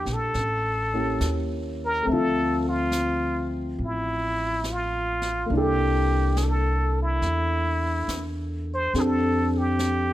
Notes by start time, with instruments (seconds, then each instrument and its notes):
Already playing: grand piano A#3 D4 E4 G4, muted trumpet G4
0.06 upright bass A#1, snare
0.13 muted trumpet A4
0.34 upright bass A1, brush sweep, snare
0.94 grand piano A#3 C#4 E4 G4
1.20 upright bass D#2, snare, hi-hat pedal
1.85 muted trumpet A#4
2.02 grand piano A3 C4, brush sweep
2.07 upright bass D2, grand piano E5
2.12 grand piano F3, muted trumpet A4
2.69 muted trumpet F4
2.92 snare, hi-hat pedal
3.78 upright bass A1, brush sweep
3.85 muted trumpet E4
4.64 snare, hi-hat pedal
4.72 muted trumpet F4
5.22 snare
5.46 upright bass C2, grand piano A#3
5.50 grand piano D4 E4, brush sweep
5.57 muted trumpet G4, grand piano A4
6.37 muted trumpet G#4, snare, hi-hat pedal
6.44 muted trumpet A4
7.02 muted trumpet E4
7.22 upright bass E2, brush sweep, snare
8.08 upright bass E2, snare, hi-hat pedal
8.74 muted trumpet C5
8.94 upright bass F2, grand piano C4 D4 G4 A4, muted trumpet G#4, brush sweep, snare
9.00 muted trumpet A4
9.58 muted trumpet G4
9.79 snare, hi-hat pedal